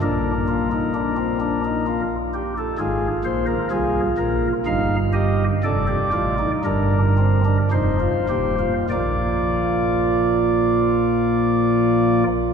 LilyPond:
<<
  \new Staff \with { instrumentName = "Pipe organ" } { \time 3/4 \key bes \major \tempo 4 = 60 << { bes'2~ bes'8 r8 | aes'8 c''16 bes'16 aes'8 bes'8 f''8 ees''8 | d''4 bes'4 c''4 | <f bes d''>2. | } \\ { d'8 f'16 ees'16 d'16 c'16 d'16 ees'16 f'8 g'16 a'16 | f'4 f'4 ees'8 g'8 | a'16 g'16 f'16 ees'16 d'8 c'16 d'16 ees'16 f'16 g'16 f'16 | f'2. | } >> }
  \new Staff \with { instrumentName = "Pipe organ" } { \clef bass \time 3/4 \key bes \major <bes,, bes,>2~ <bes,, bes,>8 r8 | <aes,, aes,>8 <bes,, bes,>8 <c, c>8 <bes,, bes,>8 <g,, g,>4 | <f,, f,>8 <a,, a,>8 <g,, g,>4 <f,, f,>8 <ees,, ees,>8 | <bes,, bes,>2. | }
>>